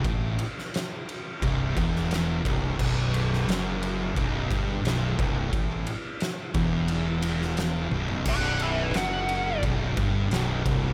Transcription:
0.04 fingered electric bass A1, distorted electric guitar A2, kick, ride
0.39 ride
0.59 snare
0.74 snare, ride
1.09 ride
1.42 fingered electric bass C1, distorted electric guitar C2, kick, ride
1.76 fingered electric bass E1, distorted electric guitar E2, kick, ride
1.96 snare
2.11 snare, ride
2.45 fingered electric bass C1, distorted electric guitar C2, kick, ride
2.79 fingered electric bass B0, distorted electric guitar B1, kick, crash
3.14 ride
3.33 snare
3.47 fingered electric bass F#1, distorted electric guitar F#2, snare, ride
3.83 ride
4.16 fingered electric bass B0, distorted electric guitar B1, kick, ride
4.50 fingered electric bass G1, distorted electric guitar G2, kick, ride
4.84 fingered electric bass B0, distorted electric guitar B1, snare, ride
5.19 fingered electric bass C1, distorted electric guitar C2, kick, ride
5.53 fingered electric bass A1, distorted electric guitar A2, kick, ride
5.87 ride
6.20 snare, ride
6.54 fingered electric bass E1, distorted electric guitar E2, kick, ride
6.88 ride
7.22 ride
7.42 snare
7.57 snare, ride
7.91 fingered electric bass B0, distorted electric guitar B1, high tom
8.08 floor tom
8.25 fingered electric bass B0, distorted electric guitar B1, lead electric guitar D5 F#5, kick, crash
8.60 lead electric guitar B4 E5, ride
8.94 fingered electric bass F#1, distorted electric guitar F#2, lead electric guitar F#5, snare, ride
9.29 ride
9.63 fingered electric bass B0, distorted electric guitar B1, kick, ride
9.97 fingered electric bass G1, distorted electric guitar G2, kick, ride
10.31 fingered electric bass B0, distorted electric guitar B1, snare, ride
10.66 fingered electric bass C1, distorted electric guitar C2, kick, ride

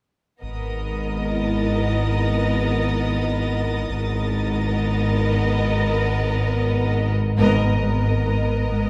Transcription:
0.42 sub bass G#1, double bass section G#1, cello section G#2, violin section B3 A#4 D#5 D#6
1.30 vibraphone E4 D#5, violin section A6
3.90 sub bass G#1, double bass section G#1, cello section G#2, violin section B3 A#4 D#5
7.38 sub bass G#1, double bass section G#1, cello section G#2, viola section B3, violin section A#4 D#5, vibraphone A#5
7.82 cello section G#3
8.25 cello section G#2
8.69 cello section G#2

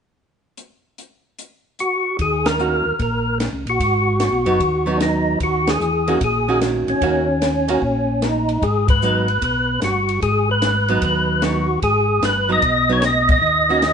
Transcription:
0.57 closed hi-hat
0.98 closed hi-hat
1.39 closed hi-hat
1.79 tonewheel organ F#4, closed hi-hat
2.19 tonewheel organ D#2 G#4, kick, ride
2.46 tonewheel organ A#4, snare, ride
2.59 hollow-body jazz guitar D#3 A#3 C#4 F#4, hi-hat pedal
2.85 tonewheel organ D#2
2.99 tonewheel organ A#1 A#4, kick, ride
3.40 snare, hi-hat pedal, ride
3.53 tonewheel organ C#2
3.67 tonewheel organ A#1 F#4, ride
3.80 tonewheel organ G#1, kick, ride
4.20 snare, hi-hat pedal, ride
4.32 tonewheel organ B1
4.46 tonewheel organ F#1, hollow-body jazz guitar F#3 B3 D#4, ride
4.60 tonewheel organ D#2, kick, ride
4.86 hollow-body jazz guitar F#3 B3 D#4
4.97 tonewheel organ D4, snare, hi-hat pedal, ride
5.02 tonewheel organ D#4
5.40 tonewheel organ D#2 F#4, kick, ride
5.67 tonewheel organ G#4, snare, ride
5.81 tonewheel organ E2, hi-hat pedal
6.08 hollow-body jazz guitar D#3 A#3 C#4 F#4, ride
6.21 tonewheel organ A#1 G#4, kick, ride
6.48 hollow-body jazz guitar D#3 A#3 C#4 F#4
6.61 snare, hi-hat pedal, ride
6.88 tonewheel organ A#1 C#4, ride
7.01 tonewheel organ D#2, hollow-body jazz guitar D#3 A#3 C#4 F#4, kick, ride
7.42 snare, hi-hat pedal, ride
7.68 hollow-body jazz guitar D#3 A#3 C#4 F#4, ride
7.82 tonewheel organ A#1, kick
8.22 tonewheel organ D#4, snare, hi-hat pedal, ride
8.49 ride
8.62 tonewheel organ G#1 G#4, kick, ride
8.88 tonewheel organ B4, kick, ride
9.02 hollow-body jazz guitar F#3 B3 D#4, hi-hat pedal
9.28 ride
9.42 tonewheel organ B1 B4, kick, ride
9.82 tonewheel organ G1 F#4, snare, hi-hat pedal, ride
10.09 ride
10.22 tonewheel organ G#1 G#4, kick, ride
10.51 tonewheel organ B4
10.62 snare, hi-hat pedal, ride
10.88 hollow-body jazz guitar F#3 B3 D#4, ride
11.02 tonewheel organ D#2 B4, kick, ride
11.42 hollow-body jazz guitar F#3 B3 D#4, tonewheel organ F#4, snare, hi-hat pedal, ride
11.82 tonewheel organ G#1 G#4, kick, ride
12.22 tonewheel organ G1 B4, snare, hi-hat pedal, ride
12.49 hollow-body jazz guitar F#3 B3 D#4, tonewheel organ D#5
12.62 tonewheel organ B1, kick, ride
12.89 hollow-body jazz guitar F#3 B3 D#4, tonewheel organ C#5
13.02 tonewheel organ D#5, snare, hi-hat pedal, ride
13.29 tonewheel organ D#5, kick, ride
13.41 tonewheel organ D#2
13.69 hollow-body jazz guitar D#3 A#3 C#4 F#4
13.82 snare, hi-hat pedal, ride

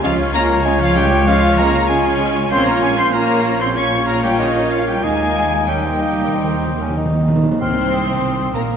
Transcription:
0.03 double bass section C#2, cello section F3, french horn section G#3 F4, bassoon G#3, viola section C#4 F4, clarinet C#4, oboe F4, trumpet C#5, violin section F5, flute F5
0.33 bassoon G#3, cello section A#3, clarinet C#4, oboe A#4, violin section A#5, flute A#5
0.64 cello section G#3, bassoon G#3, viola section C#4 F4, clarinet C#4, oboe G#4, violin section G#5, flute G#5
0.80 cello section F3, oboe F4, violin section F5, flute F5
0.94 cello section G3, bassoon G#3, clarinet C#4, oboe G4, violin section G5, flute G5
1.26 cello section F3, bassoon G#3, viola section C#4 F4, clarinet C#4, oboe F4, violin section F5, flute F5
1.58 bassoon G#3, cello section A#3, clarinet C#4, oboe A#4, violin section A#5, flute A#5
1.89 bassoon G#3, cello section G#3, viola section C#4 F4, clarinet C#4, oboe G#4, violin section G#5, flute G#5
2.20 bassoon G#3, clarinet C#4
2.50 double bass section A#1, bassoon A#3, french horn section A#3 F4, cello section C4, clarinet C#4, viola section C#4 F4, oboe C5, trumpet C#5, violin section C6, flute C6
2.67 cello section A#3, oboe A#4, violin section A#5, flute A#5
2.82 cello section G#3, oboe G#4, violin section G#5, flute G#5
2.97 cello section C4, oboe C5, flute C6, violin section C6
3.12 cello section A#3, french horn section A#3 F4, bassoon A#3, viola section C#4 F4, clarinet C#4, oboe A#4, trumpet C#5, flute A#5, violin section A#5
3.60 cello section C4, oboe C5, flute C6, violin section C6
3.75 bassoon A#3, french horn section A#3 F4, clarinet C#4, viola section C#4 F4, cello section C#4, trumpet C#5, oboe C#5, flute C#6, violin section C#6
4.06 cello section A#3, oboe A#4, flute A#5, violin section A#5
4.23 cello section G3, oboe G4, flute G5, violin section G5
4.39 cello section D#3, oboe D#4, flute D#5, violin section D#5
4.71 cello section F3, oboe F4, violin section F5, flute F5
4.86 cello section G3, oboe G4, violin section G5, flute G5
5.03 double bass section D#2, timpani D#3, cello section G#3, viola section A#3 D#4, french horn section A#3 D#4, bassoon A#3, clarinet D#4, oboe G#4, trumpet D#5, violin section G#5, flute G#5
5.12 timpani D#3
5.20 timpani D#3
5.27 timpani D#3
5.35 timpani D#3
5.42 timpani D#3
5.50 timpani D#3
5.58 timpani D#3
5.67 timpani D#3, cello section G3, french horn section A#3 D#4, viola section A#3 D#4, bassoon C#4, clarinet D#4, oboe G4, trumpet D#5, violin section G5, flute G5
5.73 timpani D#3
5.82 timpani D#3
5.86 timpani D#3, bassoon C4
5.97 timpani D#3
6.01 timpani D#3, bassoon A#3
6.13 timpani D#3
6.21 timpani D#3
6.28 timpani D#3
6.33 timpani D#3, bassoon C4
6.44 timpani D#3
6.52 timpani D#3
6.59 timpani D#3
6.66 timpani D#3
6.75 timpani D#3
6.82 timpani D#3, bassoon C#4
6.90 timpani D#3
6.97 timpani D#3, bassoon D#4
7.05 timpani D#3
7.13 timpani D#3
7.21 timpani D#3
7.28 timpani D#3
7.36 timpani D#3
7.44 timpani D#3
7.51 timpani D#3
7.61 double bass section C2, timpani G#2, cello section C3, french horn section C4, bassoon C4, viola section C4, clarinet C5, violin section C5 C6, oboe C6, flute F6
7.93 flute D#6
8.54 double bass section A#1, cello section A#2, viola section A#3, french horn section A#3, bassoon A#3, violin section A#4 A#5, clarinet A#4, oboe A#5

